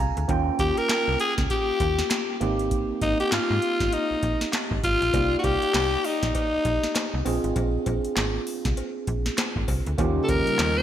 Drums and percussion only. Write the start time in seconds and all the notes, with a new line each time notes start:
0.17 closed hi-hat
0.29 kick, closed hi-hat
0.59 kick, closed hi-hat
0.77 closed hi-hat
0.89 snare, clap, closed hi-hat
1.20 closed hi-hat
1.38 kick, snare, closed hi-hat
1.50 kick, closed hi-hat
1.80 kick, closed hi-hat
1.99 snare, closed hi-hat
2.10 snare, clap, closed hi-hat
2.41 closed hi-hat
2.59 closed hi-hat
2.71 kick, closed hi-hat
3.01 kick, closed hi-hat
3.20 closed hi-hat
3.32 snare, clap, closed hi-hat
3.62 closed hi-hat
3.80 kick, snare, closed hi-hat
3.92 closed hi-hat
4.23 kick, closed hi-hat
4.41 snare, closed hi-hat
4.53 snare, clap, closed hi-hat
4.71 kick
4.83 kick, closed hi-hat
5.02 closed hi-hat
5.14 kick, closed hi-hat, cowbell
5.44 kick, closed hi-hat, cowbell
5.62 closed hi-hat
5.74 snare, clap, closed hi-hat, cowbell
6.04 open hi-hat
6.23 kick, snare, closed hi-hat
6.35 kick, closed hi-hat, cowbell
6.65 kick, closed hi-hat
6.84 snare, closed hi-hat
6.95 snare, clap, closed hi-hat, cowbell
7.26 open hi-hat, cowbell
7.44 closed hi-hat
7.56 kick, closed hi-hat, cowbell
7.86 kick, closed hi-hat, cowbell
8.05 closed hi-hat
8.16 snare, clap, closed hi-hat, cowbell
8.47 open hi-hat
8.65 kick, snare, closed hi-hat
8.77 closed hi-hat, cowbell
9.07 kick, closed hi-hat
9.26 snare, closed hi-hat
9.38 snare, clap, closed hi-hat, cowbell
9.56 kick
9.68 kick, open hi-hat, cowbell
9.86 closed hi-hat
9.98 kick, closed hi-hat, cowbell
10.28 kick, closed hi-hat, cowbell
10.47 closed hi-hat
10.59 snare, clap, closed hi-hat, cowbell